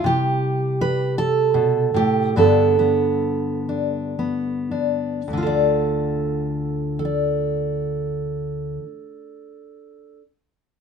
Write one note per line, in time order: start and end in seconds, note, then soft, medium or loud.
0.00 2.35 G3 soft
0.04 2.30 C3 medium
0.04 1.55 G4 medium
0.81 1.17 B4 medium
1.18 2.36 A4 medium
1.54 1.94 B2 medium
1.94 2.35 A2 soft
1.94 2.36 G4 medium
2.36 5.21 G2 medium
2.36 5.32 D3 soft
2.36 2.78 B3 soft
2.36 3.68 D4 soft
2.36 5.29 A4 medium
2.79 4.18 B3 soft
3.69 4.70 D4 soft
4.19 5.21 B3 soft
4.71 5.21 D4 soft
5.28 8.78 D2 soft
5.33 8.83 D3 soft
5.38 8.88 F4 soft
5.43 6.99 A4 soft
5.47 6.93 D5 medium
6.99 10.19 A4 soft
7.05 10.22 D5 soft